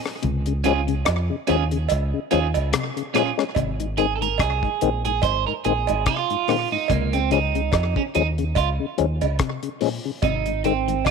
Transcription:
0.06 cross-stick
0.22 C#2 C3, closed hi-hat
0.46 C#3, closed hi-hat
0.64 C#3 F3 G#3 C#4 F4 G#4, closed hi-hat
0.87 C#3, closed hi-hat
1.05 F2, cross-stick, closed hi-hat, cowbell
1.30 C#3
1.47 D#2 F3 G#3 C#4 F4 G#4, closed hi-hat
1.71 C#3, closed hi-hat
1.89 C#2, closed hi-hat, cowbell
2.14 C#3
2.31 D#2 F3 G#3 C#4 F4 G#4, closed hi-hat
2.54 C#2, muted clean electric guitar stroke, closed hi-hat, cowbell
2.73 C3, cross-stick, closed hi-hat
2.97 C#3, closed hi-hat
3.14 A#2 F3 G#3 C#4 F4 G#4, cross-stick, closed hi-hat
3.37 G#3 C#4, cross-stick
3.55 G#1 C3, kick, closed hi-hat, cowbell
3.80 G#2, closed hi-hat
3.97 D#3 G#3 C4 G#4, closed hi-hat
4.16 A4
4.21 G#2 D#3 A#4, closed hi-hat
4.38 C2 G#4, kick, cross-stick, closed hi-hat, cowbell
4.63 G#2, kick
4.81 A#1 D#3 G#3 C4, closed hi-hat
5.05 G#2 G#4, closed hi-hat
5.22 G#1 C5, kick, closed hi-hat, cowbell
5.47 G#2 A#4
5.64 A#1 D#3 G#3 C4 G#4, closed hi-hat
5.87 G#1 G#2, closed hi-hat, cowbell
6.06 C3 F4, kick, cross-stick, closed hi-hat
6.30 G#2, closed hi-hat
6.48 A#2 D#3 G#3 C4, cross-stick, open hi-hat
6.72 G#2 D#4
6.88 C#2 C3 A#3, kick, closed hi-hat, cowbell
7.13 C#3 C4, closed hi-hat
7.31 C#3 F3 G#3 C#4 D#4, closed hi-hat
7.55 C#3, closed hi-hat
7.72 F2, kick, cross-stick, closed hi-hat, cowbell
7.96 C#3 C#4, kick
8.15 D#2 F3 G#3 C#4 D#4, closed hi-hat
8.38 C#3, closed hi-hat
8.55 C#2 F4, kick, closed hi-hat, cowbell
8.80 C#3
8.98 D#2 F3 G#3 C#4, closed hi-hat
9.21 C#2 C#3, closed hi-hat, cowbell
9.39 C3, kick, cross-stick, closed hi-hat
9.63 C#3, closed hi-hat
9.81 A#2 F3 G#3 C#4, open hi-hat
10.05 C#3
10.22 G#1 C3 D#4, kick, closed hi-hat, cowbell
10.46 G#2, closed hi-hat
10.64 D#3 G#3 C4, closed hi-hat
10.88 G#2 D#3, closed hi-hat
11.05 C2 F4, kick, cross-stick, closed hi-hat, cowbell

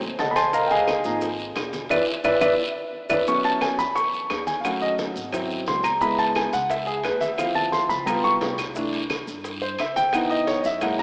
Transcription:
0.02 D#2, high bongo, high conga, low conga, maracas
0.19 C#2 A4 D#5 F#5 A5, high bongo, low bongo, high conga, high timbale, low timbale, short guiro, maracas
0.31 B5
0.36 C5 G#5 A5 C6, high bongo, high conga, high timbale, short guiro, claves, maracas
0.53 A#4 D#5 F5 A#5, high bongo, high conga, long guiro, maracas
0.66 G5, maracas
0.71 G#4 D#5 F5 G#5, high conga, high timbale
0.87 high bongo, high conga, high timbale, short guiro, claves, maracas
1.04 G#1 F3 A#3 D#4, high conga, short guiro, maracas
1.21 high bongo, high conga, high timbale, long guiro, maracas
1.39 high conga, maracas
1.56 E1, high bongo, low bongo, high conga, high timbale, low timbale, short guiro, claves, maracas
1.73 high conga, high timbale, short guiro, maracas
1.89 E2 B4 D5 E5, low bongo, high conga, high timbale, long guiro, claves, maracas
2.24 E2 B4 D5 E5, low bongo, high conga, high timbale, long guiro, claves, maracas
2.41 E2 B4 D5 E5, low bongo, high conga, high timbale, long guiro, claves, maracas
3.09 E2 B4 D5 E5, low bongo, high conga, high timbale, long guiro, claves, maracas
3.27 F#3 B3 C#4 C#6, high bongo, high conga, long guiro, maracas
3.44 A5, high conga, high timbale, maracas
3.61 G#5, high bongo, high conga, high timbale, short guiro, claves, maracas
3.79 E2 B5, high conga, short guiro, maracas
3.95 C#6, high bongo, high conga, high timbale, long guiro, maracas
4.13 high conga, maracas
4.30 D#2, high bongo, low bongo, high conga, high timbale, low timbale, short guiro, claves, maracas
4.47 G#5, high conga, high timbale, short guiro, maracas
4.60 F#3 F5, long guiro
4.64 A3 C#4 F#5, high bongo, high conga, high timbale, claves, maracas
4.82 D#5, high conga, maracas
4.98 high bongo, high conga, high timbale, short guiro, maracas
5.16 G#1, high bongo, high conga, short guiro, maracas
5.32 F#3 C4 E4, high bongo, high conga, low conga, high timbale, long guiro, claves, maracas
5.51 high bongo, high conga, maracas
5.66 C#2 C6, high bongo, low bongo, high conga, high timbale, low timbale, short guiro, maracas
5.83 A#5, high bongo, high conga, high timbale, short guiro, claves, maracas
6.01 G#3 B3 E4 B5, high bongo, long guiro, maracas
6.19 A5, high conga, high timbale, maracas
6.35 G#5, high bongo, high conga, high timbale, short guiro, claves, maracas
6.53 C#2 F#5, high conga, short guiro, maracas
6.70 E5, high bongo, high conga, high timbale, long guiro, maracas
6.87 G#4, high conga, maracas
7.04 D2 B4, high bongo, low bongo, high conga, high timbale, low timbale, short guiro, claves, maracas
7.21 E5, high conga, high timbale, short guiro, maracas
7.37 F3 C4 E4 F5, high bongo, high conga, high timbale, long guiro, claves, maracas
7.55 A5, high conga, maracas
7.72 C6, high bongo, high conga, high timbale, short guiro, maracas
7.89 C#2 B5, high bongo, short guiro, maracas
8.05 G3 B3 F4 A#5, high bongo, low conga, high timbale, long guiro, claves, maracas
8.24 C#2 C#6, high bongo, low conga, maracas
8.41 C2, high bongo, low bongo, low conga, high timbale, low timbale, short guiro, maracas
8.58 high bongo, low conga, high timbale, short guiro, claves, maracas
8.75 E3 A3 D4, high bongo, high conga, long guiro, maracas
8.93 high conga, high timbale, maracas
9.10 high bongo, high conga, high timbale, short guiro, claves, maracas
9.27 G2, high conga, short guiro, maracas
9.44 high bongo, high conga, high timbale, long guiro, maracas
9.62 C5, high conga, maracas
9.78 C#2 E5, high bongo, low bongo, high conga, high timbale, short guiro, claves, maracas
9.96 G5, high conga, high timbale, short guiro, maracas
10.13 E3 B3 D#4 F#5, high bongo, high conga, high timbale, long guiro, claves, maracas
10.30 D#5, high conga, maracas
10.47 C#5, high bongo, high conga, high timbale, short guiro, maracas
10.61 F#2 D#5, high bongo, short guiro, maracas
10.65 E5, high conga
10.81 G#3 A#3 E4 F#5, high bongo, high conga, low conga, high timbale, long guiro, claves, maracas
10.98 C#2 A#5, high bongo, high conga, maracas

